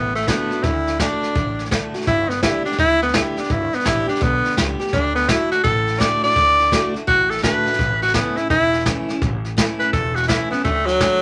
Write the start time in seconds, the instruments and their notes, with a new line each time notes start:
Already playing: upright bass A1, steel-string acoustic guitar A2, tenor saxophone B3
0.15 tenor saxophone A3, snare
0.22 snare
0.27 steel-string acoustic guitar D3 A3 D4 F#4, tenor saxophone B3, kick, snare, hi-hat pedal
0.51 steel-string acoustic guitar D4 F#4, muted upright bass stroke, snare
0.63 upright bass D2, steel-string acoustic guitar D3, tenor saxophone E4, kick, snare
0.87 snare
0.99 steel-string acoustic guitar D3 A3 D4 F#4, tenor saxophone D4, kick, snare, hi-hat pedal
1.22 muted upright bass stroke, snare
1.35 upright bass A1, steel-string acoustic guitar A2, kick, snare
1.59 snare
1.65 snare
1.71 steel-string acoustic guitar D3 A3 D4 F#4, kick, snare, hi-hat pedal
1.94 steel-string acoustic guitar D4 F#4, muted upright bass stroke, snare
2.01 snare
2.07 upright bass G1, steel-string acoustic guitar G2, tenor saxophone E4, kick, snare
2.29 tenor saxophone B3, snare
2.36 snare
2.43 steel-string acoustic guitar D3 G3 B3 G4, tenor saxophone E4, kick, snare, hi-hat pedal
2.65 steel-string acoustic guitar B3 G4, tenor saxophone D4, muted upright bass stroke, snare
2.72 snare
2.78 upright bass D2, steel-string acoustic guitar D3, tenor saxophone E4, kick, snare
3.01 tenor saxophone B3, snare
3.08 snare
3.14 steel-string acoustic guitar D3 G3 B3 G4, tenor saxophone E4, kick, snare, hi-hat pedal
3.37 steel-string acoustic guitar B3 G4, tenor saxophone D4, muted upright bass stroke, snare
3.43 snare
3.50 upright bass G1, steel-string acoustic guitar G2, tenor saxophone E4, kick, snare
3.73 tenor saxophone B3, muted upright bass stroke, snare
3.79 snare
3.84 upright bass A1, steel-string acoustic guitar D3 G3 B3 G4, tenor saxophone E4, kick, snare, hi-hat pedal
4.07 steel-string acoustic guitar B3 G4, tenor saxophone D4, muted upright bass stroke, snare
4.15 snare
4.21 upright bass B1, steel-string acoustic guitar D3, tenor saxophone B3, kick, snare
4.45 snare
4.51 snare
4.57 upright bass C#2, steel-string acoustic guitar D3 G3 B3 G4, kick, snare, hi-hat pedal
4.80 steel-string acoustic guitar B3 G4, snare
4.87 snare
4.93 upright bass D2, steel-string acoustic guitar D3, tenor saxophone D4, kick, snare
5.16 tenor saxophone B3, snare
5.22 snare
5.29 steel-string acoustic guitar D3 A3 D4 F#4, tenor saxophone E4, kick, snare, hi-hat pedal
5.51 tenor saxophone F#4, snare
5.63 upright bass A1, steel-string acoustic guitar A2, tenor saxophone A4, kick, snare
5.87 snare
5.94 snare
5.98 steel-string acoustic guitar D3 A3 D4 F#4, tenor saxophone D5, kick, snare, hi-hat pedal
6.22 steel-string acoustic guitar D4 F#4, tenor saxophone D5, muted upright bass stroke, snare
6.30 snare
6.36 upright bass D2, steel-string acoustic guitar D3, kick, snare
6.59 snare
6.66 snare
6.71 steel-string acoustic guitar D3 A3 D4 F#4, kick, snare, hi-hat pedal
6.94 steel-string acoustic guitar D4 F#4, muted upright bass stroke, snare
7.07 upright bass A1, steel-string acoustic guitar A2, tenor saxophone F#4, kick, snare
7.30 tenor saxophone A4, snare
7.37 snare
7.42 steel-string acoustic guitar D3 A3 D4 F#4, tenor saxophone B4, kick, snare, hi-hat pedal
7.65 steel-string acoustic guitar D4 F#4, snare
7.73 snare
7.79 upright bass A1, steel-string acoustic guitar A2, kick, snare
8.02 tenor saxophone F#4, snare
8.08 snare
8.14 steel-string acoustic guitar E3 A3 C#4 E4, tenor saxophone B3, kick, snare, hi-hat pedal
8.37 steel-string acoustic guitar C#4 E4, tenor saxophone E4, muted upright bass stroke, snare
8.50 upright bass E1, steel-string acoustic guitar E2, tenor saxophone E4, kick, snare
8.73 snare
8.80 snare
8.86 steel-string acoustic guitar E3 A3 C#4 E4, kick, snare, hi-hat pedal
9.08 steel-string acoustic guitar C#4 E4, muted upright bass stroke, snare
9.22 upright bass A1, steel-string acoustic guitar A2, kick, snare
9.44 snare
9.57 steel-string acoustic guitar E3 A3 C#4 E4, kick, snare, hi-hat pedal
9.80 steel-string acoustic guitar C#4 E4, tenor saxophone B4, muted upright bass stroke, snare
9.93 upright bass E1, steel-string acoustic guitar E2, tenor saxophone A4, kick, snare
10.15 tenor saxophone F#4, snare
10.23 snare
10.28 steel-string acoustic guitar E3 A3 C#4 E4, tenor saxophone E4, kick, snare, hi-hat pedal
10.50 tenor saxophone B3, steel-string acoustic guitar C#4 E4, muted upright bass stroke, snare
10.58 snare
10.64 upright bass D2, steel-string acoustic guitar D3, tenor saxophone A3, kick, snare
10.86 tenor saxophone F#3, snare
11.00 steel-string acoustic guitar D3 A3 D4 F#4, kick, snare, hi-hat pedal